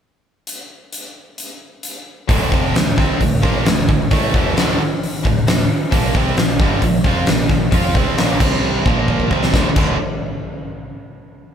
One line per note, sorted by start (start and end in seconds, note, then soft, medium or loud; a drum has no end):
0.47 closed hi-hat medium
0.92 closed hi-hat medium
1.38 closed hi-hat medium
1.83 closed hi-hat medium
2.28 2.50 D1 medium
2.28 2.50 D2 medium
2.28 2.51 A2 loud
2.28 2.51 D3 loud
2.28 kick loud
2.28 open hi-hat medium
2.50 2.73 F1 medium
2.50 2.73 F2 medium
2.50 2.74 C3 medium
2.50 2.74 F3 medium
2.50 kick loud
2.54 2.75 F2 medium
2.73 2.96 D1 medium
2.73 2.92 D2 medium
2.73 2.93 A2 medium
2.73 snare loud
2.73 open hi-hat medium
2.96 3.19 C2 medium
2.96 3.19 C3 medium
2.96 3.19 G3 loud
2.96 3.20 C4 loud
2.96 kick loud
2.96 snare soft
3.19 3.42 D1 medium
3.19 3.38 D2 medium
3.19 3.39 A2 medium
3.19 kick medium
3.19 open hi-hat medium
3.42 3.64 A#1 medium
3.42 3.64 A#2 medium
3.42 3.64 F3 medium
3.42 3.65 A#3 loud
3.42 kick medium
3.66 3.87 D1 medium
3.66 3.84 D2 medium
3.66 3.84 A2 medium
3.66 snare loud
3.66 open hi-hat medium
3.88 4.10 D1 medium
3.88 4.06 D2 medium
3.88 4.06 A2 medium
3.88 kick medium
4.11 4.32 A1 medium
4.11 4.33 A2 medium
4.11 4.33 E3 medium
4.11 4.34 A3 medium
4.11 kick loud
4.11 open hi-hat medium
4.34 4.55 E1 loud
4.34 4.56 E2 medium
4.34 4.56 B2 medium
4.34 4.57 E3 medium
4.34 kick loud
4.56 4.78 D1 medium
4.56 4.78 D2 medium
4.56 4.78 A2 medium
4.56 4.79 D3 loud
4.56 snare loud
4.56 open hi-hat medium
5.03 open hi-hat medium
5.23 5.46 D1 medium
5.23 5.42 D2 medium
5.23 5.42 A2 medium
5.23 kick medium
5.46 5.68 D1 medium
5.46 5.65 D2 medium
5.46 5.65 A2 medium
5.46 snare loud
5.46 open hi-hat medium
5.91 6.13 A#1 medium
5.91 6.13 A#2 loud
5.91 6.14 F3 loud
5.91 6.14 A#3 loud
5.91 kick loud
5.91 open hi-hat medium
6.15 6.36 C2 loud
6.15 6.37 C3 medium
6.15 6.37 G3 medium
6.15 6.37 C4 loud
6.15 kick loud
6.37 6.59 A#1 medium
6.37 6.56 A#2 medium
6.37 6.56 F3 medium
6.37 snare loud
6.37 open hi-hat medium
6.60 6.81 G1 medium
6.60 6.82 G2 loud
6.60 6.82 D3 loud
6.60 6.83 G3 loud
6.60 kick loud
6.82 7.03 A#1 medium
6.82 7.01 A#2 medium
6.82 7.01 F3 medium
6.82 kick medium
6.82 open hi-hat medium
7.04 7.26 F2 medium
7.04 7.26 F3 medium
7.04 7.27 C4 medium
7.04 7.27 F4 loud
7.04 kick medium
7.26 7.48 A#1 medium
7.26 7.45 A#2 medium
7.26 7.46 F3 medium
7.26 snare loud
7.26 open hi-hat medium
7.48 7.71 A#1 medium
7.48 7.67 A#2 medium
7.48 7.68 F3 medium
7.48 kick medium
7.48 snare soft
7.71 7.93 F2 medium
7.71 7.94 F3 medium
7.71 7.94 C4 medium
7.71 7.94 F4 loud
7.71 kick loud
7.71 open hi-hat medium
7.94 8.16 C2 loud
7.94 8.15 C3 medium
7.94 8.16 G3 medium
7.94 8.17 C4 loud
7.94 kick loud
8.15 8.38 A#1 medium
8.15 8.39 A#2 medium
8.15 8.39 F3 medium
8.15 8.40 A#3 medium
8.15 snare loud
8.15 open hi-hat medium
8.39 8.83 C2 loud
8.39 8.84 C3 loud
8.39 8.85 G3 medium
8.39 8.85 C4 loud
8.39 kick loud
8.39 crash medium
8.84 9.28 A#1 medium
8.84 9.29 A#2 medium
8.84 9.30 F3 medium
8.84 9.30 A#3 loud
8.84 kick loud
9.08 kick medium
9.20 kick medium
9.29 9.52 C2 medium
9.29 9.52 C3 medium
9.29 9.52 G3 medium
9.29 9.53 C4 medium
9.29 kick medium
9.43 snare medium
9.52 9.66 D1 medium
9.52 9.67 D2 loud
9.52 9.67 A2 medium
9.52 9.68 D3 medium
9.52 kick loud
9.52 snare loud
9.75 9.97 D1 medium
9.75 9.94 D2 medium
9.75 9.95 A2 loud
9.75 9.95 D3 loud
9.75 kick loud
9.75 crash medium